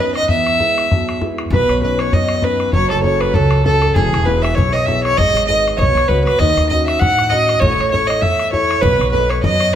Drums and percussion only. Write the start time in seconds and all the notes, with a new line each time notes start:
0.15 bodhran
0.23 bodhran
0.29 bodhran
0.47 bodhran
0.60 bodhran
0.78 bodhran
0.92 bodhran
1.09 bodhran
1.21 bodhran
1.38 bodhran
1.46 bodhran
1.53 bodhran
1.69 bodhran
1.82 bodhran
1.99 bodhran
2.13 bodhran
2.29 bodhran
2.42 bodhran
2.60 bodhran
2.67 bodhran
2.73 bodhran
2.90 bodhran
3.04 bodhran
3.21 bodhran
3.34 bodhran
3.51 bodhran
3.66 bodhran
3.82 bodhran
3.90 bodhran
3.96 bodhran
4.14 bodhran
4.27 bodhran
4.44 bodhran
4.58 bodhran
4.75 bodhran
4.88 bodhran
5.05 bodhran
5.13 bodhran
5.20 bodhran
5.37 bodhran
5.50 bodhran
5.68 bodhran
5.82 bodhran
5.97 bodhran
6.11 bodhran
6.27 bodhran
6.34 bodhran
6.41 bodhran
6.57 bodhran
6.71 bodhran
6.88 bodhran
7.02 bodhran
7.19 bodhran
7.32 bodhran
7.49 bodhran
7.56 bodhran
7.63 bodhran
7.81 bodhran
7.94 bodhran
8.10 bodhran
8.23 bodhran
8.39 bodhran
8.54 bodhran
8.71 bodhran
8.78 bodhran
8.85 bodhran
9.01 bodhran
9.14 bodhran
9.30 bodhran
9.44 bodhran
9.60 bodhran